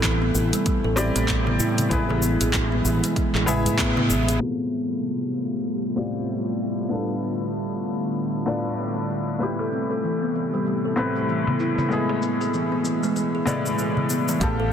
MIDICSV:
0, 0, Header, 1, 7, 480
1, 0, Start_track
1, 0, Tempo, 625000
1, 1467, Time_signature, 4, 2, 24, 8
1, 11312, End_track
2, 0, Start_track
2, 0, Title_t, "Felt piano"
2, 0, Program_c, 0, 0
2, 0, Control_c, 0, 64, 127
2, 0, Note_on_c, 0, 64, 69
2, 0, Note_on_c, 0, 67, 71
2, 0, Note_on_c, 0, 71, 87
2, 720, Note_off_c, 0, 64, 0
2, 725, Note_off_c, 0, 67, 0
2, 730, Note_off_c, 0, 71, 0
2, 737, Note_on_c, 0, 60, 106
2, 743, Note_on_c, 0, 64, 87
2, 748, Note_on_c, 0, 67, 98
2, 752, Note_on_c, 0, 74, 117
2, 889, Note_off_c, 0, 60, 0
2, 892, Note_off_c, 0, 64, 0
2, 895, Note_off_c, 0, 67, 0
2, 897, Note_off_c, 0, 74, 0
2, 1451, Note_on_c, 0, 59, 75
2, 1461, Note_on_c, 0, 64, 74
2, 1471, Note_on_c, 0, 68, 72
2, 1476, Control_c, 0, 64, 0
2, 1481, Note_on_c, 0, 71, 84
2, 1620, Control_c, 0, 64, 127
2, 2636, Note_off_c, 0, 59, 0
2, 2640, Note_off_c, 0, 64, 0
2, 2646, Note_off_c, 0, 68, 0
2, 2651, Note_off_c, 0, 71, 0
2, 2658, Note_on_c, 0, 59, 102
2, 2665, Note_on_c, 0, 64, 94
2, 2669, Note_on_c, 0, 68, 94
2, 2674, Note_on_c, 0, 76, 111
2, 2810, Note_off_c, 0, 59, 0
2, 2813, Note_off_c, 0, 64, 0
2, 2815, Note_off_c, 0, 68, 0
2, 2818, Note_off_c, 0, 76, 0
2, 3374, Note_on_c, 0, 45, 59
2, 3382, Note_on_c, 0, 60, 56
2, 3389, Note_on_c, 0, 65, 59
2, 3396, Control_c, 0, 64, 0
2, 3396, Note_on_c, 0, 67, 60
2, 3405, Note_on_c, 0, 69, 69
2, 3528, Control_c, 0, 64, 127
2, 4557, Note_off_c, 0, 45, 0
2, 4561, Note_off_c, 0, 60, 0
2, 4564, Note_off_c, 0, 65, 0
2, 4568, Note_off_c, 0, 67, 0
2, 4572, Note_off_c, 0, 69, 0
2, 4578, Note_on_c, 0, 45, 83
2, 4581, Note_on_c, 0, 60, 72
2, 4585, Note_on_c, 0, 65, 81
2, 4589, Note_on_c, 0, 67, 77
2, 4593, Note_on_c, 0, 74, 89
2, 4730, Note_off_c, 0, 45, 0
2, 4731, Note_off_c, 0, 60, 0
2, 4733, Note_off_c, 0, 65, 0
2, 4735, Note_off_c, 0, 67, 0
2, 4737, Note_off_c, 0, 74, 0
2, 5292, Note_on_c, 0, 45, 64
2, 5298, Note_on_c, 0, 59, 61
2, 5306, Note_on_c, 0, 62, 62
2, 5315, Note_on_c, 0, 65, 61
2, 5318, Control_c, 0, 64, 0
2, 5322, Note_on_c, 0, 69, 70
2, 5459, Control_c, 0, 64, 127
2, 6476, Note_off_c, 0, 45, 0
2, 6479, Note_off_c, 0, 59, 0
2, 6483, Note_off_c, 0, 62, 0
2, 6488, Note_off_c, 0, 65, 0
2, 6491, Note_off_c, 0, 69, 0
2, 6497, Note_on_c, 0, 45, 90
2, 6501, Note_on_c, 0, 59, 84
2, 6505, Note_on_c, 0, 62, 74
2, 6508, Note_on_c, 0, 65, 76
2, 6512, Note_on_c, 0, 74, 95
2, 6649, Note_off_c, 0, 45, 0
2, 6651, Note_off_c, 0, 59, 0
2, 6653, Note_off_c, 0, 62, 0
2, 6655, Note_off_c, 0, 65, 0
2, 6657, Note_off_c, 0, 74, 0
2, 7211, Note_on_c, 0, 45, 66
2, 7219, Note_on_c, 0, 71, 62
2, 7234, Note_on_c, 0, 64, 61
2, 7236, Control_c, 0, 64, 0
2, 7241, Note_on_c, 0, 67, 70
2, 7351, Control_c, 0, 64, 127
2, 8395, Note_off_c, 0, 45, 0
2, 8399, Note_off_c, 0, 71, 0
2, 8407, Note_off_c, 0, 64, 0
2, 8411, Note_off_c, 0, 67, 0
2, 8417, Note_on_c, 0, 45, 93
2, 8421, Note_on_c, 0, 59, 84
2, 8426, Note_on_c, 0, 60, 81
2, 8430, Note_on_c, 0, 64, 76
2, 8433, Note_on_c, 0, 71, 102
2, 8569, Note_off_c, 0, 45, 0
2, 8571, Note_off_c, 0, 59, 0
2, 8573, Note_off_c, 0, 60, 0
2, 8575, Note_off_c, 0, 64, 0
2, 8577, Note_off_c, 0, 71, 0
2, 9129, Note_on_c, 0, 45, 69
2, 9137, Note_on_c, 0, 56, 63
2, 9145, Note_on_c, 0, 59, 59
2, 9153, Note_on_c, 0, 64, 59
2, 9158, Control_c, 0, 64, 0
2, 9161, Note_on_c, 0, 68, 75
2, 9293, Control_c, 0, 64, 127
2, 10315, Note_off_c, 0, 45, 0
2, 10318, Note_off_c, 0, 56, 0
2, 10322, Note_off_c, 0, 59, 0
2, 10326, Note_off_c, 0, 64, 0
2, 10330, Note_off_c, 0, 68, 0
2, 10334, Note_on_c, 0, 45, 90
2, 10338, Note_on_c, 0, 56, 80
2, 10342, Note_on_c, 0, 59, 87
2, 10345, Note_on_c, 0, 64, 82
2, 10350, Note_on_c, 0, 74, 92
2, 10488, Note_off_c, 0, 45, 0
2, 10490, Note_off_c, 0, 56, 0
2, 10492, Note_off_c, 0, 59, 0
2, 10493, Note_off_c, 0, 64, 0
2, 10495, Note_off_c, 0, 74, 0
2, 11060, Note_on_c, 0, 77, 67
2, 11070, Note_on_c, 0, 67, 68
2, 11076, Control_c, 0, 64, 0
2, 11081, Note_on_c, 0, 69, 88
2, 11233, Control_c, 0, 64, 127
2, 11312, Note_off_c, 0, 67, 0
2, 11312, Note_off_c, 0, 69, 0
2, 11312, Note_off_c, 0, 77, 0
2, 11312, End_track
3, 0, Start_track
3, 0, Title_t, "Kalimba"
3, 0, Program_c, 1, 108
3, 25, Note_on_c, 1, 52, 91
3, 161, Note_off_c, 1, 52, 0
3, 168, Note_on_c, 1, 59, 74
3, 257, Note_off_c, 1, 59, 0
3, 265, Note_on_c, 1, 52, 76
3, 401, Note_off_c, 1, 52, 0
3, 408, Note_on_c, 1, 55, 102
3, 498, Note_off_c, 1, 55, 0
3, 507, Note_on_c, 1, 55, 87
3, 642, Note_off_c, 1, 55, 0
3, 648, Note_on_c, 1, 69, 75
3, 705, Note_off_c, 1, 69, 0
3, 748, Note_on_c, 1, 60, 80
3, 883, Note_off_c, 1, 60, 0
3, 890, Note_on_c, 1, 57, 80
3, 978, Note_off_c, 1, 57, 0
3, 987, Note_on_c, 1, 52, 84
3, 1122, Note_off_c, 1, 52, 0
3, 1131, Note_on_c, 1, 59, 84
3, 1218, Note_off_c, 1, 59, 0
3, 1229, Note_on_c, 1, 64, 103
3, 1356, Note_off_c, 1, 64, 0
3, 1371, Note_on_c, 1, 64, 76
3, 1458, Note_off_c, 1, 64, 0
3, 1468, Note_on_c, 1, 56, 80
3, 1549, Note_off_c, 1, 56, 0
3, 1610, Note_on_c, 1, 68, 78
3, 1665, Note_off_c, 1, 68, 0
3, 1708, Note_on_c, 1, 59, 76
3, 1843, Note_off_c, 1, 59, 0
3, 1852, Note_on_c, 1, 68, 89
3, 1943, Note_off_c, 1, 68, 0
3, 1949, Note_on_c, 1, 52, 80
3, 2083, Note_off_c, 1, 52, 0
3, 2090, Note_on_c, 1, 59, 73
3, 2178, Note_off_c, 1, 59, 0
3, 2190, Note_on_c, 1, 52, 79
3, 2324, Note_off_c, 1, 52, 0
3, 2332, Note_on_c, 1, 56, 99
3, 2421, Note_off_c, 1, 56, 0
3, 2430, Note_on_c, 1, 56, 86
3, 2564, Note_off_c, 1, 56, 0
3, 2574, Note_on_c, 1, 68, 81
3, 2627, Note_off_c, 1, 68, 0
3, 2671, Note_on_c, 1, 56, 76
3, 2750, Note_off_c, 1, 56, 0
3, 2812, Note_on_c, 1, 68, 81
3, 2903, Note_off_c, 1, 68, 0
3, 2909, Note_on_c, 1, 59, 80
3, 3036, Note_off_c, 1, 59, 0
3, 3051, Note_on_c, 1, 59, 107
3, 3143, Note_off_c, 1, 59, 0
3, 3148, Note_on_c, 1, 68, 79
3, 3276, Note_off_c, 1, 68, 0
3, 3289, Note_on_c, 1, 68, 81
3, 3377, Note_off_c, 1, 68, 0
3, 7228, Note_on_c, 1, 57, 69
3, 7309, Note_off_c, 1, 57, 0
3, 7371, Note_on_c, 1, 69, 68
3, 7426, Note_off_c, 1, 69, 0
3, 7466, Note_on_c, 1, 60, 63
3, 7602, Note_off_c, 1, 60, 0
3, 7610, Note_on_c, 1, 69, 73
3, 7702, Note_off_c, 1, 69, 0
3, 7708, Note_on_c, 1, 52, 71
3, 7843, Note_off_c, 1, 52, 0
3, 7852, Note_on_c, 1, 59, 68
3, 7939, Note_off_c, 1, 59, 0
3, 7949, Note_on_c, 1, 52, 66
3, 8083, Note_off_c, 1, 52, 0
3, 8092, Note_on_c, 1, 55, 80
3, 8183, Note_off_c, 1, 55, 0
3, 8192, Note_on_c, 1, 55, 74
3, 8325, Note_off_c, 1, 55, 0
3, 8333, Note_on_c, 1, 69, 67
3, 8387, Note_off_c, 1, 69, 0
3, 8430, Note_on_c, 1, 60, 66
3, 8564, Note_off_c, 1, 60, 0
3, 8572, Note_on_c, 1, 57, 67
3, 8659, Note_off_c, 1, 57, 0
3, 8669, Note_on_c, 1, 52, 72
3, 8803, Note_off_c, 1, 52, 0
3, 8812, Note_on_c, 1, 59, 73
3, 8898, Note_off_c, 1, 59, 0
3, 8910, Note_on_c, 1, 64, 90
3, 9036, Note_off_c, 1, 64, 0
3, 9050, Note_on_c, 1, 64, 67
3, 9138, Note_off_c, 1, 64, 0
3, 9149, Note_on_c, 1, 56, 70
3, 9229, Note_off_c, 1, 56, 0
3, 9290, Note_on_c, 1, 68, 66
3, 9345, Note_off_c, 1, 68, 0
3, 9388, Note_on_c, 1, 59, 66
3, 9523, Note_off_c, 1, 59, 0
3, 9530, Note_on_c, 1, 68, 74
3, 9622, Note_off_c, 1, 68, 0
3, 9628, Note_on_c, 1, 52, 74
3, 9763, Note_off_c, 1, 52, 0
3, 9769, Note_on_c, 1, 59, 69
3, 9857, Note_off_c, 1, 59, 0
3, 9868, Note_on_c, 1, 52, 64
3, 10003, Note_off_c, 1, 52, 0
3, 10011, Note_on_c, 1, 56, 92
3, 10098, Note_off_c, 1, 56, 0
3, 10108, Note_on_c, 1, 56, 83
3, 10243, Note_off_c, 1, 56, 0
3, 10251, Note_on_c, 1, 68, 64
3, 10306, Note_off_c, 1, 68, 0
3, 10345, Note_on_c, 1, 68, 88
3, 10482, Note_off_c, 1, 68, 0
3, 10489, Note_on_c, 1, 56, 68
3, 10545, Note_off_c, 1, 56, 0
3, 10586, Note_on_c, 1, 56, 69
3, 10668, Note_off_c, 1, 56, 0
3, 10729, Note_on_c, 1, 56, 73
3, 10822, Note_off_c, 1, 56, 0
3, 10829, Note_on_c, 1, 59, 68
3, 10909, Note_off_c, 1, 59, 0
3, 10971, Note_on_c, 1, 52, 69
3, 11063, Note_off_c, 1, 52, 0
3, 11069, Note_on_c, 1, 57, 80
3, 11149, Note_off_c, 1, 57, 0
3, 11210, Note_on_c, 1, 69, 77
3, 11266, Note_off_c, 1, 69, 0
3, 11312, End_track
4, 0, Start_track
4, 0, Title_t, "Ambient pad"
4, 0, Program_c, 2, 92
4, 0, Note_on_c, 2, 48, 73
4, 0, Note_on_c, 2, 55, 72
4, 0, Note_on_c, 2, 57, 74
4, 0, Note_on_c, 2, 64, 86
4, 1434, Note_off_c, 2, 55, 0
4, 1447, Note_off_c, 2, 48, 0
4, 1448, Note_off_c, 2, 57, 0
4, 1464, Note_on_c, 2, 52, 71
4, 1465, Note_on_c, 2, 56, 68
4, 1466, Note_on_c, 2, 47, 82
4, 3355, Note_off_c, 2, 64, 0
4, 3367, Note_off_c, 2, 47, 0
4, 3367, Note_off_c, 2, 52, 0
4, 3367, Note_off_c, 2, 56, 0
4, 3385, Note_on_c, 2, 48, 72
4, 3386, Note_on_c, 2, 57, 65
4, 3387, Note_on_c, 2, 55, 65
4, 3387, Note_on_c, 2, 65, 75
4, 5287, Note_off_c, 2, 48, 0
4, 5287, Note_off_c, 2, 57, 0
4, 5302, Note_on_c, 2, 59, 64
4, 5304, Note_on_c, 2, 45, 70
4, 5304, Note_on_c, 2, 50, 66
4, 7196, Note_off_c, 2, 55, 0
4, 7196, Note_off_c, 2, 65, 0
4, 7205, Note_off_c, 2, 59, 0
4, 7206, Note_off_c, 2, 45, 0
4, 7206, Note_off_c, 2, 50, 0
4, 7226, Note_on_c, 2, 48, 70
4, 7227, Note_on_c, 2, 55, 67
4, 7227, Note_on_c, 2, 64, 80
4, 7228, Note_on_c, 2, 57, 63
4, 9127, Note_off_c, 2, 48, 0
4, 9128, Note_off_c, 2, 55, 0
4, 9129, Note_off_c, 2, 57, 0
4, 9148, Note_on_c, 2, 47, 67
4, 9149, Note_on_c, 2, 52, 65
4, 9150, Note_on_c, 2, 56, 68
4, 11036, Note_off_c, 2, 64, 0
4, 11048, Note_off_c, 2, 47, 0
4, 11049, Note_off_c, 2, 52, 0
4, 11049, Note_off_c, 2, 56, 0
4, 11066, Note_on_c, 2, 48, 80
4, 11066, Note_on_c, 2, 55, 71
4, 11066, Note_on_c, 2, 57, 73
4, 11312, Note_off_c, 2, 48, 0
4, 11312, Note_off_c, 2, 55, 0
4, 11312, Note_off_c, 2, 57, 0
4, 11312, End_track
5, 0, Start_track
5, 0, Title_t, "Fretless electric bass"
5, 0, Program_c, 3, 35
5, 0, Note_on_c, 3, 33, 94
5, 242, Note_off_c, 3, 33, 0
5, 266, Note_on_c, 3, 33, 103
5, 387, Note_off_c, 3, 33, 0
5, 648, Note_on_c, 3, 33, 105
5, 845, Note_off_c, 3, 33, 0
5, 887, Note_on_c, 3, 33, 100
5, 1202, Note_off_c, 3, 33, 0
5, 1225, Note_on_c, 3, 45, 99
5, 1436, Note_off_c, 3, 45, 0
5, 1467, Note_on_c, 3, 33, 110
5, 1815, Note_off_c, 3, 33, 0
5, 1849, Note_on_c, 3, 33, 86
5, 2163, Note_off_c, 3, 33, 0
5, 2186, Note_on_c, 3, 33, 101
5, 2307, Note_off_c, 3, 33, 0
5, 2566, Note_on_c, 3, 33, 105
5, 2808, Note_on_c, 3, 45, 90
5, 2819, Note_off_c, 3, 33, 0
5, 3146, Note_on_c, 3, 33, 105
5, 3157, Note_off_c, 3, 45, 0
5, 3356, Note_off_c, 3, 33, 0
5, 11067, Note_on_c, 3, 33, 107
5, 11312, Note_off_c, 3, 33, 0
5, 11312, End_track
6, 0, Start_track
6, 0, Title_t, "Darbuka"
6, 743, Note_on_c, 9, 63, 78
6, 819, Note_off_c, 9, 63, 0
6, 887, Note_on_c, 9, 62, 72
6, 964, Note_off_c, 9, 62, 0
6, 1128, Note_on_c, 9, 63, 67
6, 1128, Note_on_c, 9, 64, 86
6, 1205, Note_off_c, 9, 63, 0
6, 1205, Note_off_c, 9, 64, 0
6, 1374, Note_on_c, 9, 64, 88
6, 1451, Note_off_c, 9, 64, 0
6, 1604, Note_on_c, 9, 64, 80
6, 1616, Note_on_c, 9, 63, 77
6, 1681, Note_off_c, 9, 64, 0
6, 1693, Note_off_c, 9, 63, 0
6, 1707, Note_on_c, 9, 62, 42
6, 1784, Note_off_c, 9, 62, 0
6, 1851, Note_on_c, 9, 62, 36
6, 1928, Note_off_c, 9, 62, 0
6, 2663, Note_on_c, 9, 64, 82
6, 2740, Note_off_c, 9, 64, 0
6, 3049, Note_on_c, 9, 64, 92
6, 3126, Note_off_c, 9, 64, 0
6, 3149, Note_on_c, 9, 63, 34
6, 3226, Note_off_c, 9, 63, 0
6, 7364, Note_on_c, 9, 62, 47
6, 7366, Note_on_c, 9, 63, 65
6, 7441, Note_off_c, 9, 62, 0
6, 7443, Note_off_c, 9, 63, 0
6, 8426, Note_on_c, 9, 63, 66
6, 8503, Note_off_c, 9, 63, 0
6, 8812, Note_on_c, 9, 63, 68
6, 8813, Note_on_c, 9, 64, 79
6, 8888, Note_off_c, 9, 63, 0
6, 8890, Note_off_c, 9, 64, 0
6, 9046, Note_on_c, 9, 64, 87
6, 9051, Note_on_c, 9, 62, 61
6, 9123, Note_off_c, 9, 64, 0
6, 9127, Note_off_c, 9, 62, 0
6, 9288, Note_on_c, 9, 63, 66
6, 9291, Note_on_c, 9, 62, 42
6, 9365, Note_off_c, 9, 63, 0
6, 9368, Note_off_c, 9, 62, 0
6, 10342, Note_on_c, 9, 64, 90
6, 10419, Note_off_c, 9, 64, 0
6, 10729, Note_on_c, 9, 64, 80
6, 10805, Note_off_c, 9, 64, 0
6, 10828, Note_on_c, 9, 63, 28
6, 10905, Note_off_c, 9, 63, 0
6, 10973, Note_on_c, 9, 63, 58
6, 11050, Note_off_c, 9, 63, 0
6, 11312, End_track
7, 0, Start_track
7, 0, Title_t, "Drums"
7, 27, Note_on_c, 9, 39, 99
7, 27, Note_on_c, 9, 42, 49
7, 28, Note_on_c, 9, 36, 103
7, 30, Note_on_c, 9, 82, 33
7, 104, Note_off_c, 9, 39, 0
7, 104, Note_off_c, 9, 42, 0
7, 105, Note_off_c, 9, 36, 0
7, 107, Note_off_c, 9, 82, 0
7, 269, Note_on_c, 9, 82, 77
7, 346, Note_off_c, 9, 82, 0
7, 408, Note_on_c, 9, 42, 55
7, 410, Note_on_c, 9, 82, 42
7, 485, Note_off_c, 9, 42, 0
7, 487, Note_off_c, 9, 82, 0
7, 506, Note_on_c, 9, 42, 45
7, 508, Note_on_c, 9, 36, 102
7, 508, Note_on_c, 9, 82, 32
7, 583, Note_off_c, 9, 42, 0
7, 584, Note_off_c, 9, 36, 0
7, 585, Note_off_c, 9, 82, 0
7, 748, Note_on_c, 9, 82, 72
7, 825, Note_off_c, 9, 82, 0
7, 889, Note_on_c, 9, 42, 60
7, 892, Note_on_c, 9, 82, 44
7, 966, Note_off_c, 9, 42, 0
7, 968, Note_off_c, 9, 82, 0
7, 987, Note_on_c, 9, 39, 99
7, 987, Note_on_c, 9, 42, 48
7, 988, Note_on_c, 9, 36, 103
7, 989, Note_on_c, 9, 82, 34
7, 1063, Note_off_c, 9, 39, 0
7, 1063, Note_off_c, 9, 42, 0
7, 1065, Note_off_c, 9, 36, 0
7, 1066, Note_off_c, 9, 82, 0
7, 1228, Note_on_c, 9, 82, 73
7, 1305, Note_off_c, 9, 82, 0
7, 1368, Note_on_c, 9, 42, 55
7, 1371, Note_on_c, 9, 82, 41
7, 1445, Note_off_c, 9, 42, 0
7, 1448, Note_off_c, 9, 82, 0
7, 1468, Note_on_c, 9, 36, 103
7, 1468, Note_on_c, 9, 42, 47
7, 1471, Note_on_c, 9, 82, 32
7, 1545, Note_off_c, 9, 36, 0
7, 1545, Note_off_c, 9, 42, 0
7, 1548, Note_off_c, 9, 82, 0
7, 1709, Note_on_c, 9, 82, 77
7, 1786, Note_off_c, 9, 82, 0
7, 1849, Note_on_c, 9, 42, 57
7, 1852, Note_on_c, 9, 82, 44
7, 1926, Note_off_c, 9, 42, 0
7, 1928, Note_off_c, 9, 82, 0
7, 1947, Note_on_c, 9, 39, 106
7, 1947, Note_on_c, 9, 42, 49
7, 1949, Note_on_c, 9, 36, 104
7, 1950, Note_on_c, 9, 82, 34
7, 2024, Note_off_c, 9, 39, 0
7, 2024, Note_off_c, 9, 42, 0
7, 2026, Note_off_c, 9, 36, 0
7, 2026, Note_off_c, 9, 82, 0
7, 2191, Note_on_c, 9, 82, 77
7, 2268, Note_off_c, 9, 82, 0
7, 2332, Note_on_c, 9, 42, 57
7, 2335, Note_on_c, 9, 82, 44
7, 2409, Note_off_c, 9, 42, 0
7, 2412, Note_off_c, 9, 82, 0
7, 2429, Note_on_c, 9, 36, 109
7, 2429, Note_on_c, 9, 42, 44
7, 2432, Note_on_c, 9, 82, 30
7, 2506, Note_off_c, 9, 36, 0
7, 2506, Note_off_c, 9, 42, 0
7, 2509, Note_off_c, 9, 82, 0
7, 2573, Note_on_c, 9, 39, 34
7, 2650, Note_off_c, 9, 39, 0
7, 2672, Note_on_c, 9, 82, 68
7, 2749, Note_off_c, 9, 82, 0
7, 2812, Note_on_c, 9, 42, 56
7, 2815, Note_on_c, 9, 82, 44
7, 2889, Note_off_c, 9, 42, 0
7, 2891, Note_off_c, 9, 82, 0
7, 2909, Note_on_c, 9, 36, 103
7, 2909, Note_on_c, 9, 39, 113
7, 2909, Note_on_c, 9, 42, 50
7, 2912, Note_on_c, 9, 82, 32
7, 2985, Note_off_c, 9, 36, 0
7, 2986, Note_off_c, 9, 39, 0
7, 2986, Note_off_c, 9, 42, 0
7, 2989, Note_off_c, 9, 82, 0
7, 3151, Note_on_c, 9, 82, 74
7, 3227, Note_off_c, 9, 82, 0
7, 3291, Note_on_c, 9, 42, 58
7, 3293, Note_on_c, 9, 82, 45
7, 3368, Note_off_c, 9, 42, 0
7, 3370, Note_off_c, 9, 82, 0
7, 3391, Note_on_c, 9, 82, 28
7, 3468, Note_off_c, 9, 82, 0
7, 4109, Note_on_c, 9, 82, 67
7, 4186, Note_off_c, 9, 82, 0
7, 4588, Note_on_c, 9, 82, 62
7, 4665, Note_off_c, 9, 82, 0
7, 5068, Note_on_c, 9, 82, 63
7, 5145, Note_off_c, 9, 82, 0
7, 5209, Note_on_c, 9, 82, 38
7, 5285, Note_off_c, 9, 82, 0
7, 5306, Note_on_c, 9, 82, 32
7, 5383, Note_off_c, 9, 82, 0
7, 5545, Note_on_c, 9, 82, 72
7, 5622, Note_off_c, 9, 82, 0
7, 5688, Note_on_c, 9, 82, 39
7, 5765, Note_off_c, 9, 82, 0
7, 5785, Note_on_c, 9, 82, 32
7, 5862, Note_off_c, 9, 82, 0
7, 6024, Note_on_c, 9, 82, 69
7, 6101, Note_off_c, 9, 82, 0
7, 6167, Note_on_c, 9, 82, 38
7, 6244, Note_off_c, 9, 82, 0
7, 6265, Note_on_c, 9, 82, 28
7, 6342, Note_off_c, 9, 82, 0
7, 6507, Note_on_c, 9, 82, 64
7, 6583, Note_off_c, 9, 82, 0
7, 6650, Note_on_c, 9, 82, 39
7, 6726, Note_off_c, 9, 82, 0
7, 6748, Note_on_c, 9, 82, 33
7, 6825, Note_off_c, 9, 82, 0
7, 6986, Note_on_c, 9, 82, 69
7, 7063, Note_off_c, 9, 82, 0
7, 7128, Note_on_c, 9, 82, 39
7, 7205, Note_off_c, 9, 82, 0
7, 7228, Note_on_c, 9, 82, 32
7, 7304, Note_off_c, 9, 82, 0
7, 7467, Note_on_c, 9, 82, 70
7, 7544, Note_off_c, 9, 82, 0
7, 7609, Note_on_c, 9, 82, 43
7, 7686, Note_off_c, 9, 82, 0
7, 7709, Note_on_c, 9, 82, 33
7, 7785, Note_off_c, 9, 82, 0
7, 7948, Note_on_c, 9, 82, 72
7, 8025, Note_off_c, 9, 82, 0
7, 8092, Note_on_c, 9, 82, 41
7, 8169, Note_off_c, 9, 82, 0
7, 8189, Note_on_c, 9, 82, 30
7, 8266, Note_off_c, 9, 82, 0
7, 8428, Note_on_c, 9, 82, 66
7, 8505, Note_off_c, 9, 82, 0
7, 8571, Note_on_c, 9, 82, 40
7, 8647, Note_off_c, 9, 82, 0
7, 8671, Note_on_c, 9, 82, 33
7, 8748, Note_off_c, 9, 82, 0
7, 8908, Note_on_c, 9, 82, 70
7, 8985, Note_off_c, 9, 82, 0
7, 9053, Note_on_c, 9, 82, 43
7, 9129, Note_off_c, 9, 82, 0
7, 9151, Note_on_c, 9, 82, 31
7, 9228, Note_off_c, 9, 82, 0
7, 9390, Note_on_c, 9, 82, 75
7, 9467, Note_off_c, 9, 82, 0
7, 9533, Note_on_c, 9, 82, 42
7, 9610, Note_off_c, 9, 82, 0
7, 9630, Note_on_c, 9, 82, 33
7, 9707, Note_off_c, 9, 82, 0
7, 9870, Note_on_c, 9, 82, 72
7, 9946, Note_off_c, 9, 82, 0
7, 10010, Note_on_c, 9, 82, 37
7, 10087, Note_off_c, 9, 82, 0
7, 10110, Note_on_c, 9, 82, 29
7, 10186, Note_off_c, 9, 82, 0
7, 10348, Note_on_c, 9, 82, 66
7, 10425, Note_off_c, 9, 82, 0
7, 10491, Note_on_c, 9, 82, 41
7, 10568, Note_off_c, 9, 82, 0
7, 10588, Note_on_c, 9, 82, 31
7, 10665, Note_off_c, 9, 82, 0
7, 10828, Note_on_c, 9, 82, 68
7, 10905, Note_off_c, 9, 82, 0
7, 10970, Note_on_c, 9, 82, 39
7, 11047, Note_off_c, 9, 82, 0
7, 11067, Note_on_c, 9, 36, 119
7, 11068, Note_on_c, 9, 42, 49
7, 11070, Note_on_c, 9, 82, 34
7, 11144, Note_off_c, 9, 36, 0
7, 11145, Note_off_c, 9, 42, 0
7, 11147, Note_off_c, 9, 82, 0
7, 11312, End_track
0, 0, End_of_file